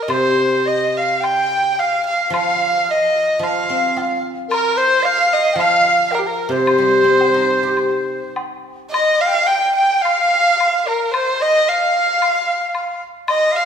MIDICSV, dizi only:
0, 0, Header, 1, 2, 480
1, 0, Start_track
1, 0, Tempo, 555042
1, 86, Time_signature, 4, 2, 24, 8
1, 2485, Tempo, 539568
1, 6325, Tempo, 575264
1, 7765, Tempo, 557103
1, 9685, Tempo, 537153
1, 11925, End_track
2, 0, Start_track
2, 0, Title_t, "Dizi"
2, 0, Program_c, 0, 73
2, 0, Note_on_c, 0, 70, 65
2, 98, Note_on_c, 0, 72, 64
2, 111, Note_off_c, 0, 70, 0
2, 569, Note_on_c, 0, 75, 74
2, 582, Note_off_c, 0, 72, 0
2, 811, Note_off_c, 0, 75, 0
2, 831, Note_on_c, 0, 77, 74
2, 1045, Note_on_c, 0, 79, 84
2, 1058, Note_off_c, 0, 77, 0
2, 1553, Note_on_c, 0, 77, 71
2, 1566, Note_off_c, 0, 79, 0
2, 1769, Note_off_c, 0, 77, 0
2, 1774, Note_on_c, 0, 77, 71
2, 1995, Note_off_c, 0, 77, 0
2, 2015, Note_on_c, 0, 77, 74
2, 2343, Note_off_c, 0, 77, 0
2, 2387, Note_on_c, 0, 77, 70
2, 2489, Note_off_c, 0, 77, 0
2, 2501, Note_on_c, 0, 75, 85
2, 2943, Note_off_c, 0, 75, 0
2, 2997, Note_on_c, 0, 77, 77
2, 3667, Note_off_c, 0, 77, 0
2, 3919, Note_on_c, 0, 70, 83
2, 4171, Note_on_c, 0, 72, 93
2, 4184, Note_off_c, 0, 70, 0
2, 4402, Note_on_c, 0, 77, 88
2, 4415, Note_off_c, 0, 72, 0
2, 4820, Note_off_c, 0, 77, 0
2, 4846, Note_on_c, 0, 79, 69
2, 4878, Note_on_c, 0, 77, 96
2, 4891, Note_off_c, 0, 79, 0
2, 5365, Note_on_c, 0, 70, 77
2, 5379, Note_off_c, 0, 77, 0
2, 5481, Note_off_c, 0, 70, 0
2, 5490, Note_on_c, 0, 70, 63
2, 5718, Note_on_c, 0, 72, 69
2, 5732, Note_off_c, 0, 70, 0
2, 7284, Note_off_c, 0, 72, 0
2, 7768, Note_on_c, 0, 75, 79
2, 8021, Note_on_c, 0, 77, 85
2, 8034, Note_off_c, 0, 75, 0
2, 8070, Note_on_c, 0, 79, 76
2, 8083, Note_off_c, 0, 77, 0
2, 8140, Note_on_c, 0, 77, 94
2, 8153, Note_off_c, 0, 79, 0
2, 8250, Note_on_c, 0, 79, 85
2, 8263, Note_off_c, 0, 77, 0
2, 8490, Note_off_c, 0, 79, 0
2, 8495, Note_on_c, 0, 79, 81
2, 8710, Note_on_c, 0, 77, 90
2, 8723, Note_off_c, 0, 79, 0
2, 9431, Note_off_c, 0, 77, 0
2, 9436, Note_on_c, 0, 70, 77
2, 9685, Note_on_c, 0, 72, 75
2, 9698, Note_off_c, 0, 70, 0
2, 9918, Note_on_c, 0, 75, 88
2, 9932, Note_off_c, 0, 72, 0
2, 10168, Note_on_c, 0, 77, 85
2, 10181, Note_off_c, 0, 75, 0
2, 11364, Note_off_c, 0, 77, 0
2, 11593, Note_on_c, 0, 75, 81
2, 11806, Note_on_c, 0, 77, 94
2, 11820, Note_off_c, 0, 75, 0
2, 11925, Note_off_c, 0, 77, 0
2, 11925, End_track
0, 0, End_of_file